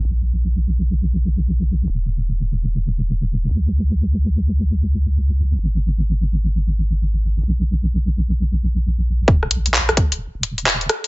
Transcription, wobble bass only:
0.05 1.88 A#1 medium
1.90 3.49 D#1 medium
3.51 5.57 C#2 medium
5.59 7.42 G#1 medium
7.43 9.26 A#1 medium
9.28 9.47 D#1 medium
9.51 10.06 A#1 loud
10.12 10.27 D#1 medium
10.35 10.86 D#1 medium

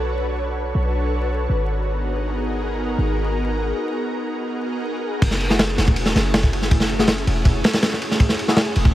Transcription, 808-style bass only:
0.00 0.73 B1 medium
0.75 1.48 B1 medium
1.49 2.97 G#1 medium
2.98 3.73 G#1 medium
5.22 5.76 F#1 loud
5.78 6.14 E1 medium
6.15 7.26 F#1 loud
7.27 7.63 E1 loud
8.76 8.93 E1 medium

